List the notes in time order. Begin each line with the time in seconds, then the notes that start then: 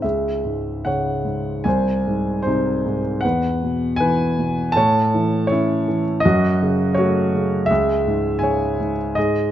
0.02 C#2 G#4 E5
0.45 G#2
0.85 C#3 C#5 F#5
1.25 G#2
1.64 C2 C5 G#5
2.07 G#2
2.43 D#4 C5
2.47 C3
2.86 G#2
3.21 E2 B4 F#5
3.63 B2
3.96 B4 G#5
4.01 E3
4.39 B2
4.72 A2 A5
4.77 C#5
5.15 E3
5.47 C#5
5.52 C#4 E4
5.88 E3
6.20 D#5
6.25 F#2 F#4
6.62 C#3
6.95 A3 F#4 C#5
7.35 C#3
7.66 E5
7.70 C#2 G#4
8.07 G#2
8.39 C#3 G#5
8.43 C#5
8.80 G#2
9.15 G#2 G#4 D#5